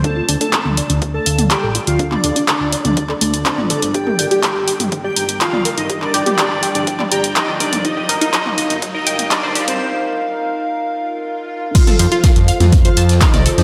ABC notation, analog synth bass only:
X:1
M:4/4
L:1/16
Q:1/4=123
K:Gm
V:1 name="Analog synth bass" clef=bass
D,, z D,, z2 D,, z D,,2 z D,,2 z A,,, z D,,- | D,, z D,, z2 D,, z D,,2 z D,,2 z A,,, z G,,,- | G,,, z G,,, z2 G,,, z G,,,2 z G,,,2 z D,, z G,,,- | G,,, z G,,, z2 G,,, z G,,,2 z G,,,2 z D,, z G,,,- |
G,,, z G,,, z2 G,,, z G,,,2 z G,,,2 z D,, z G,,, | z16 | z2 F,, z2 F,, z F,,2 z F,,2 z C,, z F,, |]